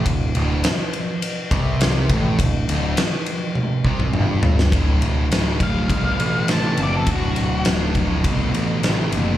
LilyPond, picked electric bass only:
\new Staff \with { instrumentName = "Picked electric bass" } { \clef bass \time 4/4 \key d \mixolydian \tempo 4 = 103 d,,8 d,,8 r4. c,4 a,,8 | d,,8 d,,8 r4. c,8 g,,4 | d,,8 d,,8 d,,4 c,8 a,,8 a,,8 fis,,8 | d,,8 d,,8 d,,4 c,8 a,,8 a,,8 fis,,8 | }